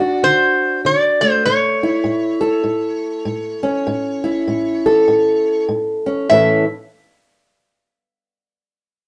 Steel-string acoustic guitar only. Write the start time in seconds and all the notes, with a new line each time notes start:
Already playing: D3 D4
0.00 F#4
0.23 D3
0.85 D3
1.22 A3
1.45 A2
1.83 E4
2.04 A2
2.41 A4
2.63 A2
3.25 A2
3.63 C#4
3.87 A2
4.24 E4
4.48 A2
4.86 A4
5.08 A2
5.68 A2
6.06 C#4
6.30 A2 E3 C#4 E4 A4